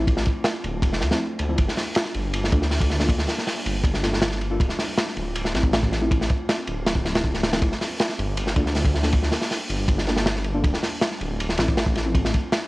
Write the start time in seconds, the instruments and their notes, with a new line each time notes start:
Already playing: detuned saw bass A1, ambient pad A3 C4 D4 F4
0.07 kick, ride
0.17 snare
0.26 kick, ride
0.44 snare, ride
0.64 detuned saw bass D1, ride
0.82 detuned saw bass F1, kick, ride
0.93 snare
1.01 detuned saw bass D2, snare, ride
1.11 synth stab F3 A3 C4 E4, snare
1.39 detuned saw bass D2, ride
1.49 synth stab F3 A3 C4 E4
1.58 detuned saw bass G1, ambient pad G3 A#3 F4, kick, ride
1.68 snare
1.77 snare, open hi-hat
1.95 snare, ride
2.05 snare
2.14 detuned saw bass G1, ride
2.34 ride
2.44 snare
2.52 detuned saw bass D2, synth stab A#3 D4 F4 A4, kick, ride
2.62 snare
2.71 snare, open hi-hat
2.81 kick, ride
2.90 snare
3.00 synth stab A#3 D4 F4 A4, snare, open hi-hat
3.09 kick, ride
3.18 snare
3.27 snare, open hi-hat
3.38 snare
3.47 snare, open hi-hat
3.66 detuned saw bass G1, ride
3.84 detuned saw bass G1, kick, ride
3.94 snare
4.03 synth stab A#3 D4 F4 A4, snare, ride
4.13 snare
4.22 snare, ride
4.31 snare
4.41 ride
4.51 synth stab A#3 D4 F4 A4
4.60 detuned saw bass D1, ambient pad A3 C4, kick, ride
4.69 snare
4.79 snare, open hi-hat
4.98 snare, ride
5.08 snare
5.17 detuned saw bass D1, ride
5.36 ride
5.45 snare
5.54 detuned saw bass A1, synth stab F3 A3 C4 E4, snare, ride
5.63 kick
5.73 snare, ride
5.83 kick
5.92 snare, ride
6.02 synth stab F3 A3 C4 E4
6.11 kick, ride
6.21 snare
6.30 kick, ride
6.49 snare, ride
6.67 detuned saw bass D1, ride
6.86 detuned saw bass D1, snare, ride
6.95 kick
7.05 synth stab F3 A3 C4 E4, snare, ride
7.15 snare, ride
7.24 kick
7.34 snare, ride
7.43 snare, ride
7.53 synth stab F3 A3 C4 E4, snare, ride
7.62 detuned saw bass G1, ambient pad G3 A#3 D4, kick, ride
7.72 snare
7.81 snare, open hi-hat
7.99 snare, ride
8.09 snare
8.19 detuned saw bass G1, ride
8.37 ride
8.47 snare
8.56 detuned saw bass D2, synth stab A#3 D4 F4 A4, kick, ride
8.66 snare
8.75 snare, open hi-hat
8.85 kick, ride
8.95 snare
9.03 synth stab A#3 D4 F4 A4, snare, open hi-hat
9.12 kick, ride
9.23 snare
9.32 snare, open hi-hat
9.42 snare
9.50 snare, open hi-hat
9.70 detuned saw bass G1, ride
9.88 detuned saw bass G1, kick, ride
9.98 snare
10.07 synth stab A#3 D4 F4 A4, snare, ride
10.17 snare
10.26 snare, ride
10.36 snare
10.44 ride
10.55 synth stab A#3 D4 F4 A4
10.64 detuned saw bass D1, ambient pad A3 C4 F4, kick, ride
10.74 snare
10.83 snare, open hi-hat
11.01 snare, ride
11.11 snare
11.21 detuned saw bass D1, ride
11.40 ride
11.49 snare
11.57 detuned saw bass A1, synth stab F3 A3 C4 E4, snare, ride
11.68 kick
11.77 snare, ride
11.86 kick
11.95 snare, ride
12.06 synth stab F3 A3 C4 E4
12.15 kick, ride
12.25 snare
12.34 kick, ride
12.52 snare, ride